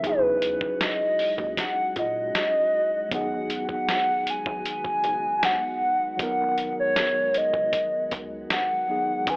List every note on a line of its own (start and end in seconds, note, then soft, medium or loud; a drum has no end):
0.00 3.06 F#3 medium
0.00 3.07 C#4 medium
0.00 3.07 D#4 medium
0.00 9.23 F#4 medium
0.00 kick loud
0.04 0.58 E2 loud
0.04 3.09 G#3 medium
0.04 3.08 E4 medium
0.04 3.09 G#4 medium
0.04 0.85 B4 loud
0.04 closed hi-hat medium
0.42 closed hi-hat medium
0.61 0.69 D#2 soft
0.61 kick loud
0.81 1.59 D#5 loud
0.81 snare loud
0.81 closed hi-hat medium
1.19 1.27 D#2 soft
1.19 open hi-hat soft
1.38 1.56 D#2 medium
1.38 kick loud
1.57 1.95 F#5 loud
1.57 kick medium
1.57 snare medium
1.57 closed hi-hat medium
1.96 2.32 A#2 medium
1.96 3.09 D#5 loud
1.96 kick medium
1.96 closed hi-hat medium
2.35 snare loud
2.35 closed hi-hat medium
3.09 3.65 G#1 loud
3.09 9.23 D#3 medium
3.09 6.14 F#3 medium
3.09 9.23 G#3 medium
3.09 9.23 B3 medium
3.09 6.15 B3 medium
3.09 6.16 D#4 medium
3.09 kick loud
3.09 closed hi-hat medium
3.14 6.17 G#4 medium
3.14 3.67 F#5 loud
3.50 closed hi-hat medium
3.69 4.32 F#5 loud
3.69 kick medium
3.89 snare loud
3.89 closed hi-hat medium
4.27 4.34 B1 soft
4.27 4.67 G#5 loud
4.27 closed hi-hat medium
4.46 4.64 B1 medium
4.46 kick loud
4.66 5.46 G#5 loud
4.66 closed hi-hat medium
4.85 kick loud
5.04 5.57 F#1 medium
5.04 closed hi-hat medium
5.43 6.20 F#5 loud
5.43 snare loud
5.43 closed hi-hat medium
6.17 6.73 G#1 loud
6.17 8.83 F#3 medium
6.17 8.84 B3 medium
6.17 8.85 D#4 medium
6.17 kick loud
6.17 closed hi-hat medium
6.22 8.86 A#4 medium
6.22 6.74 F#5 loud
6.58 closed hi-hat medium
6.77 6.85 F#1 soft
6.77 7.39 C#5 loud
6.96 snare loud
6.96 closed hi-hat medium
7.34 7.42 F#1 soft
7.34 8.13 D#5 medium
7.34 closed hi-hat medium
7.54 7.71 F#1 medium
7.54 kick loud
7.73 kick medium
7.73 closed hi-hat medium
8.11 8.47 C#2 loud
8.11 kick medium
8.11 closed hi-hat medium
8.50 9.31 F#5 loud
8.50 snare loud
8.50 closed hi-hat medium
8.88 9.27 F#3 medium
8.88 9.27 B3 soft
8.88 9.28 D#4 medium
8.88 9.28 G#4 medium
9.25 9.37 C#2 loud
9.25 9.37 B2 medium
9.25 9.37 C#3 medium
9.25 9.37 E3 medium
9.25 9.37 B3 medium
9.25 9.37 C#4 medium
9.25 kick loud
9.25 closed hi-hat medium
9.29 9.37 D#3 medium
9.29 9.37 B4 medium
9.29 9.37 G#5 loud